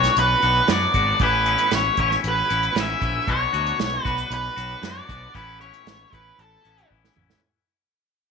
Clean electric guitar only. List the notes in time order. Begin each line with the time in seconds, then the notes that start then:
Already playing: B2 F#3 B3 D4 F#4
0.43 B3 D4 F#4
0.68 F#3 B3 D4 F#4
0.95 B3 D4 F#4
1.20 A2 E3 B3 C#4 E4
1.46 A2 E3 B3 C#4 E4
1.98 B3 C#4 E4
2.49 B3 C#4 E4
2.75 E3 B3 C#4 E4
3.01 B3 C#4 E4
3.27 B2 F#3 B3 D4 F#4
3.53 B2 F#3 B3 D4 F#4
4.05 B3 D4 F#4
4.56 B3 D4 F#4
4.82 F#3 B3 D4 F#4
5.09 B3 D4 F#4
5.34 A2 E3 B3 C#4 E4
5.59 A2 E3 B3 C#4 E4
6.12 B3 C#4 E4
6.64 B3 C#4 E4
6.89 E3 B3 C#4 E4
7.16 B3 C#4 E4